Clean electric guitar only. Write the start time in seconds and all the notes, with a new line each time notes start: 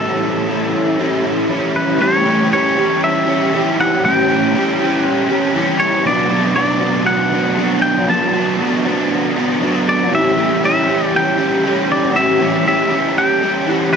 Already playing: A4
1.76 B4
2.02 C#5
2.53 C#5
3.04 E5
3.80 F#5
4.05 G5
5.00 F#5
5.80 C#5
6.07 D5
6.56 D5
7.06 F#5
7.82 G5
8.10 A5
9.89 D5
10.15 E5
10.65 E5
11.16 G5
11.92 D5
12.16 E5
12.68 E5
13.18 G5
13.72 F#5
13.93 B4